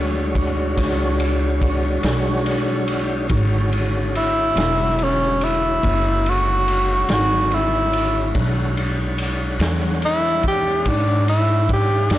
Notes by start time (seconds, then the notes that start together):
Already playing: D2 G#3 D4 F#4 C#5
0.35 kick, ride
0.77 C#2, kick, snare, ride
1.20 ride
1.62 kick, ride
2.03 B1, snare, ride
2.46 ride
2.88 ride
3.29 G#1 D3 G#3 F#4 C#5, kick, ride
3.72 ride
4.15 E4, ride
4.56 E1, snare, ride
4.99 ride
5.04 C#4
5.41 E4, ride
5.83 F#1, kick, ride
6.26 F#4, ride
6.68 ride
7.08 G#1, snare, ride
7.13 F#4
7.51 E4, ride
7.93 ride
8.34 B1 G#3 D4 C#5 F#5, kick, ride
8.77 ride
9.18 ride
9.59 E2, snare, ride
10.02 E4, ride
10.43 kick, ride
10.48 G4
10.85 G#2 D4, kick, ride
11.28 E4, ride
11.69 kick, ride
11.73 G4
12.10 F#2 D4, snare, ride